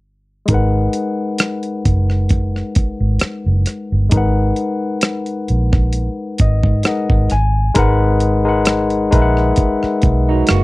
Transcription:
0.46 fingered electric bass G#1, tine electric piano G#3 D#4, kick, closed hi-hat
0.50 tine electric piano A#4 B4 F#5
0.93 closed hi-hat
1.38 cross-stick, closed hi-hat
1.63 closed hi-hat
1.85 fingered electric bass F#1, kick, closed hi-hat
2.10 cross-stick
2.29 kick, closed hi-hat
2.56 cross-stick
2.75 muted fingered electric bass stroke, kick, closed hi-hat
3.00 fingered electric bass G#1
3.19 muted fingered electric bass stroke, cross-stick, closed hi-hat
3.46 fingered electric bass F#1
3.66 cross-stick, closed hi-hat
3.92 fingered electric bass G1
4.09 fingered electric bass G#1, tine electric piano G#3 D#4, kick, closed hi-hat
4.14 tine electric piano A#4 B4 F#5
4.56 closed hi-hat
5.01 cross-stick, closed hi-hat
5.26 closed hi-hat
5.48 fingered electric bass A#1, closed hi-hat
5.73 kick, cross-stick
5.93 closed hi-hat
6.38 fingered electric bass G#1, tine electric piano D#5, kick, closed hi-hat
6.63 fingered electric bass G#2, kick
6.83 tine electric piano G#3 D#4 A#4 B4 F#5, cross-stick, closed hi-hat
6.88 tine electric piano D#5
7.10 fingered electric bass G#1, kick
7.30 fingered electric bass G#1, tine electric piano G#5, cross-stick, closed hi-hat
7.75 fingered electric bass G#1, tine electric piano G#3 D#4 A#4 B4, kick, closed hi-hat
7.79 tine electric piano F#5
8.20 closed hi-hat
8.45 tine electric piano G#3 D#4 A#4 B4
8.49 tine electric piano F#5
8.65 cross-stick, closed hi-hat
8.90 closed hi-hat
9.11 fingered electric bass A#1, tine electric piano G#3 D#4 A#4 B4, kick, closed hi-hat
9.15 tine electric piano E5
9.22 tine electric piano F#5
9.37 cross-stick
9.56 kick, closed hi-hat
9.83 muted fingered electric bass stroke, cross-stick
10.02 fingered electric bass B1, kick, closed hi-hat
10.29 clean electric guitar F#3 D#4
10.47 fingered electric bass F#1, clean electric guitar A#3 F#4, cross-stick, closed hi-hat

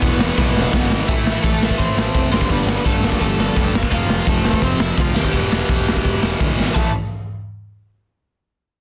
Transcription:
Already playing: distorted electric guitar E2 B2 E3, overdriven electric guitar B3 B4
0.02 picked electric bass E1, kick, ride
0.19 picked electric bass E1, snare
0.35 picked electric bass B1, distorted electric guitar E2 B2 E3, kick, snare
0.55 picked electric bass E1, snare
0.73 picked electric bass G1, kick, snare
0.91 picked electric bass G#1, snare
1.07 picked electric bass A1, distorted electric guitar A2 E3 A3, overdriven electric guitar E4 E5, kick, open hi-hat
1.26 picked electric bass A1, snare
1.42 picked electric bass A1, overdriven electric guitar A3 A4, kick, open hi-hat
1.61 picked electric bass A1, snare
1.70 kick
1.78 picked electric bass A1, overdriven electric guitar C4 C5, kick, open hi-hat
1.97 picked electric bass A1, snare
2.15 picked electric bass F1, kick, open hi-hat
2.30 picked electric bass G1, distorted electric guitar G2 D3 G3, overdriven electric guitar C4 C5, snare
2.41 kick
2.50 picked electric bass G1, overdriven electric guitar B3 B4, kick, open hi-hat
2.66 picked electric bass G1, snare
2.85 picked electric bass G1, overdriven electric guitar A3 A4, kick, open hi-hat
3.02 picked electric bass G1, snare
3.12 kick
3.20 picked electric bass G1, overdriven electric guitar A3 A4, kick, open hi-hat
3.38 picked electric bass G1, overdriven electric guitar A3 A4, snare
3.54 picked electric bass F1, distorted electric guitar G2 D3 G3, kick, open hi-hat
3.73 picked electric bass G1, snare
3.83 kick
3.90 picked electric bass F1, distorted electric guitar F2 C3 F3, overdriven electric guitar F4 F5, kick, open hi-hat
4.08 picked electric bass F1, snare
4.27 picked electric bass F1, overdriven electric guitar A3 A4, kick, open hi-hat
4.44 picked electric bass F1, snare
4.53 kick
4.61 picked electric bass F1, overdriven electric guitar C4 C5, kick, open hi-hat
4.79 picked electric bass F1, overdriven electric guitar E4 E5, snare
4.97 picked electric bass D2, overdriven electric guitar F4 F5, kick, open hi-hat
5.15 picked electric bass D#2, distorted electric guitar F2 C3 F3, overdriven electric guitar G4 G5, snare
5.24 kick
5.32 picked electric bass E1, distorted electric guitar E2 B2 E3, kick, open hi-hat
5.51 picked electric bass E1, snare
5.69 picked electric bass E1, kick, open hi-hat
5.86 picked electric bass E1, snare
5.96 kick
6.05 picked electric bass E1, kick, open hi-hat
6.22 picked electric bass E1, snare
6.40 picked electric bass D2, kick, open hi-hat
6.56 picked electric bass G#1, distorted electric guitar E2 B2 E3, snare
6.74 picked electric bass A1, distorted electric guitar A2 E3 A3, overdriven electric guitar A5, kick, crash

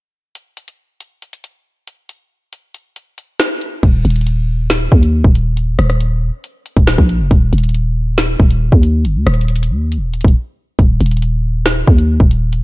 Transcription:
0.35 closed hi-hat
0.57 closed hi-hat
0.68 closed hi-hat
1.01 closed hi-hat
1.22 closed hi-hat
1.33 closed hi-hat
1.44 closed hi-hat
1.87 closed hi-hat
2.09 closed hi-hat
2.53 closed hi-hat
2.74 closed hi-hat
2.96 closed hi-hat
3.18 closed hi-hat
3.40 snare, closed hi-hat
3.61 closed hi-hat
3.83 808-style bass D#1, kick, closed hi-hat, crash
4.05 808-style bass D#1, closed hi-hat
4.10 closed hi-hat
4.16 closed hi-hat
4.21 closed hi-hat
4.27 closed hi-hat
4.70 snare, closed hi-hat
4.92 808-style bass D#2, kick
5.03 closed hi-hat
5.24 808-style bass D#1, kick
5.35 closed hi-hat
5.57 closed hi-hat
5.79 808-style bass D#1, cross-stick, closed hi-hat
5.90 cross-stick, closed hi-hat
6.00 closed hi-hat
6.44 closed hi-hat
6.66 closed hi-hat
6.77 808-style bass D#1, kick, closed hi-hat
6.87 snare
6.98 808-style bass A#1, kick
7.09 closed hi-hat
7.20 808-style bass F1
7.31 808-style bass D#1, kick, closed hi-hat
7.53 808-style bass D#1, closed hi-hat
7.58 closed hi-hat
7.64 closed hi-hat
7.69 closed hi-hat
7.74 closed hi-hat
8.18 snare, closed hi-hat
8.40 808-style bass D#1, kick
8.51 closed hi-hat
8.72 808-style bass D#2, kick
8.83 closed hi-hat
9.05 808-style bass F#1, closed hi-hat
9.16 808-style bass D#2
9.27 808-style bass D#1, cross-stick, closed hi-hat
9.34 closed hi-hat
9.41 closed hi-hat
9.48 closed hi-hat
9.56 closed hi-hat
9.63 closed hi-hat
9.70 808-style bass D#2
9.92 closed hi-hat
9.97 808-style bass D#1
10.14 closed hi-hat
10.21 808-style bass D#1, kick, closed hi-hat
10.28 closed hi-hat
10.79 808-style bass D#1, kick, closed hi-hat
11.01 808-style bass D#1, closed hi-hat
11.06 closed hi-hat
11.11 closed hi-hat
11.17 closed hi-hat
11.22 closed hi-hat
11.66 snare, closed hi-hat
11.87 808-style bass D#2, kick
11.98 closed hi-hat
12.20 808-style bass D#1, kick
12.31 closed hi-hat
12.53 closed hi-hat

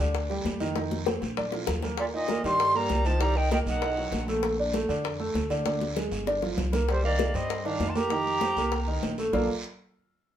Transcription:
0.00 upright bass D2, grand piano D3 D4
0.14 high bongo, high conga, long guiro
0.30 grand piano G3 G4, high bongo, high conga
0.44 upright bass F2, high bongo, low bongo, high conga, short guiro
0.60 grand piano D#3 D#4, high bongo, high conga, short guiro
0.76 grand piano D#3 D#4, high bongo, high conga, long guiro
0.91 high conga
1.06 grand piano C4 C5, high bongo, high conga, short guiro
1.22 upright bass A#1, high bongo, high conga, short guiro
1.37 grand piano D4 D5, high bongo, low conga, long guiro
1.52 grand piano F3 F4, high bongo
1.67 upright bass D#2, high bongo, low conga, short guiro
1.82 grand piano A#3 A#4, low bongo, low conga, short guiro
1.97 tenor saxophone A#2, flute D5, high bongo, high conga, long guiro
2.14 tenor saxophone A#2, grand piano D#4 D#5, flute D#5, high conga
2.28 grand piano A#3 A#4, high bongo, high conga, short guiro
2.44 upright bass G2, grand piano D#3 D#4, tenor saxophone G3, flute C6, high bongo, short guiro
2.59 high bongo, high conga, long guiro
2.75 tenor saxophone G3, grand piano A#3 A#4, flute A#5, high bongo, high conga
2.89 upright bass C2, high bongo, low bongo, high conga, short guiro
3.05 grand piano D#3 D#4, tenor saxophone F3, flute A5, high bongo, short guiro
3.20 grand piano D#3 D#4, tenor saxophone G3, flute A#5, high bongo, high conga, long guiro
3.36 tenor saxophone D#3, flute G5, high conga
3.51 tenor saxophone D#3, grand piano A#3 A#4, flute G5, high bongo, high conga, short guiro
3.66 upright bass B1, tenor saxophone D#3, flute F#5, high bongo, high conga, short guiro
3.82 grand piano D#4 D#5, high bongo, high conga, long guiro
3.97 grand piano F#3 F#4, high bongo, high conga
4.12 upright bass A#1, high bongo, low bongo, high conga, short guiro
4.28 grand piano A3 A4, high bongo, high conga, short guiro
4.43 high bongo, high conga, long guiro
4.59 grand piano D4 D5, high conga
4.74 grand piano A3 A4, high bongo, high conga, short guiro
4.88 upright bass F2, grand piano D3 D4, high bongo, high conga, short guiro
5.04 high bongo, high conga, long guiro
5.20 grand piano A3 A4, high bongo, high conga
5.34 upright bass D2, high bongo, low bongo, high conga, short guiro
5.50 grand piano D3 D4, high bongo, short guiro
5.66 grand piano D3 D4, high bongo, high conga, long guiro
5.81 high conga
5.96 grand piano G#3 G#4, high bongo, low conga, short guiro
6.11 upright bass G1, high bongo, short guiro
6.27 grand piano D4 D5, high bongo, long guiro
6.42 grand piano F3 F4, high bongo, low conga
6.57 upright bass C2, low bongo, low conga, short guiro
6.72 grand piano A#3 A#4, low bongo, low conga, short guiro
6.89 tenor saxophone G3, flute C5, high bongo, high conga, long guiro
7.03 grand piano D#3 D#4, tenor saxophone A#3, flute D5, high conga
7.19 high bongo, high conga, short guiro
7.34 upright bass G2, grand piano G3 G4, tenor saxophone C4, flute D#5, high bongo, high conga, short guiro
7.50 high bongo, high conga, long guiro
7.58 tenor saxophone C4, flute D#5
7.65 grand piano D#3 D#4, tenor saxophone D4, flute F5, high bongo, high conga
7.80 upright bass F2, high bongo, low bongo, high conga, short guiro
7.88 tenor saxophone F4, flute A5
7.95 grand piano A#3 A#4, tenor saxophone G4, flute A#5, high bongo, high conga, short guiro
8.10 grand piano D#3 D#4, high bongo, high conga, long guiro
8.26 high conga
8.41 grand piano C4 C5, high bongo, high conga, short guiro
8.56 upright bass C2, grand piano A#3 A#4, high bongo, high conga, short guiro
8.72 high bongo, high conga, long guiro
8.87 grand piano D#3 D#4, high bongo, high conga
9.03 upright bass A#1, high bongo, low bongo, high conga, short guiro
9.18 grand piano A3 A4, high bongo, high conga, short guiro
9.33 upright bass A#1, grand piano A#3 F4 A4 A#4 D5 F5, low bongo, low conga, long guiro

